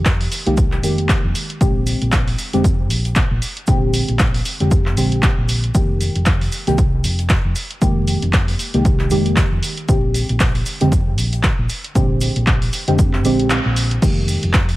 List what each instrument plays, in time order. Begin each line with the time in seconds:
Already playing: fingered electric bass F1, synth stab D#3 G#3 A#3 G4
0.05 kick, snare, clap, closed hi-hat, shaker
0.21 snare, open hi-hat
0.32 open hi-hat, shaker
0.46 fingered electric bass C2, synth stab D#3 G#3 A#3 G4, closed hi-hat
0.57 kick, closed hi-hat, shaker
0.72 clap, closed hi-hat
0.83 fingered electric bass F1, synth stab D#3 G#3 A#3 G4, open hi-hat, shaker
0.98 closed hi-hat
1.09 kick, snare, clap, closed hi-hat, shaker
1.24 fingered electric bass F1
1.35 open hi-hat, shaker
1.50 closed hi-hat
1.61 fingered electric bass A#1, synth stab D3 G#3 C4 G4, kick, closed hi-hat, shaker
1.87 open hi-hat, shaker
2.02 fingered electric bass A#1, closed hi-hat
2.12 kick, snare, clap, closed hi-hat, shaker
2.27 closed hi-hat, open hi-hat
2.38 open hi-hat, shaker
2.53 fingered electric bass F1, synth stab D3 G#3 C4 G4, closed hi-hat
2.64 kick, closed hi-hat, shaker
2.90 fingered electric bass A#1, open hi-hat, shaker
3.05 closed hi-hat
3.15 kick, snare, clap, closed hi-hat, shaker
3.31 fingered electric bass A#1
3.42 open hi-hat, shaker
3.57 closed hi-hat
3.67 fingered electric bass A#1, synth stab D3 G#3 C4 G4, kick, closed hi-hat, shaker
3.94 open hi-hat, shaker
4.08 fingered electric bass A#1, closed hi-hat
4.19 kick, snare, clap, closed hi-hat, shaker
4.34 snare, open hi-hat
4.45 open hi-hat, shaker
4.60 fingered electric bass F1, synth stab D3 G#3 C4 G4, closed hi-hat
4.71 kick, closed hi-hat, shaker
4.86 clap, closed hi-hat
4.97 fingered electric bass A#1, synth stab D3 G#3 C4 G4, open hi-hat, shaker
5.12 closed hi-hat
5.22 kick, snare, clap, closed hi-hat, shaker
5.38 fingered electric bass A#1
5.49 open hi-hat, shaker
5.64 closed hi-hat
5.74 fingered electric bass F1, synth stab D#3 G#3 A#3 G4, kick, closed hi-hat, shaker
6.01 open hi-hat, shaker
6.15 fingered electric bass F1, closed hi-hat
6.26 kick, snare, clap, closed hi-hat, shaker
6.41 closed hi-hat, open hi-hat
6.52 open hi-hat, shaker
6.67 fingered electric bass C2, synth stab D#3 G#3 A#3 G4, closed hi-hat
6.78 kick, closed hi-hat, shaker
7.04 fingered electric bass F1, open hi-hat, shaker
7.19 closed hi-hat
7.29 kick, snare, clap, closed hi-hat, shaker
7.45 fingered electric bass F1
7.56 open hi-hat, shaker
7.71 closed hi-hat
7.81 fingered electric bass F1, synth stab D#3 G#3 A#3 G4, kick, closed hi-hat, shaker
8.07 open hi-hat, shaker
8.22 fingered electric bass F1, closed hi-hat
8.33 kick, snare, clap, closed hi-hat, shaker
8.48 snare, open hi-hat
8.59 open hi-hat, shaker
8.74 fingered electric bass C2, synth stab D#3 G#3 A#3 G4, closed hi-hat
8.85 kick, closed hi-hat, shaker
8.99 clap, closed hi-hat
9.10 fingered electric bass F1, synth stab D#3 G#3 A#3 G4, open hi-hat, shaker
9.26 closed hi-hat
9.36 kick, snare, clap, closed hi-hat, shaker
9.52 fingered electric bass F1
9.63 open hi-hat, shaker
9.77 closed hi-hat
9.88 fingered electric bass A#1, synth stab D3 G#3 C4 G4, kick, closed hi-hat, shaker
10.14 open hi-hat, shaker
10.29 fingered electric bass A#1, closed hi-hat
10.40 kick, snare, clap, closed hi-hat, shaker
10.55 closed hi-hat, open hi-hat
10.66 open hi-hat, shaker
10.80 fingered electric bass F1, synth stab D3 G#3 C4 G4, closed hi-hat
10.92 kick, closed hi-hat, shaker
11.18 fingered electric bass A#1, open hi-hat, shaker
11.32 closed hi-hat
11.43 kick, snare, clap, closed hi-hat, shaker
11.59 fingered electric bass A#1
11.69 open hi-hat, shaker
11.84 closed hi-hat
11.95 fingered electric bass A#1, synth stab D3 G#3 C4 G4, kick, closed hi-hat, shaker
12.21 open hi-hat, shaker
12.36 fingered electric bass A#1, closed hi-hat
12.47 kick, clap, closed hi-hat, shaker
12.62 closed hi-hat, open hi-hat
12.73 open hi-hat, shaker
12.88 fingered electric bass F1, synth stab D3 G#3 C4 G4, closed hi-hat
12.99 kick, closed hi-hat, shaker
13.13 clap, closed hi-hat
13.24 fingered electric bass A#1, synth stab D3 G#3 C4 G4, open hi-hat, shaker
13.39 closed hi-hat
13.50 clap, closed hi-hat, shaker
13.65 fingered electric bass A#1
13.76 open hi-hat, shaker
13.91 closed hi-hat
14.02 fingered electric bass F1, synth stab D#3 G#3 A#3 G4, kick, closed hi-hat, crash, shaker
14.28 open hi-hat, shaker
14.43 fingered electric bass F1, closed hi-hat
14.53 kick, snare, clap, closed hi-hat, shaker
14.69 closed hi-hat, open hi-hat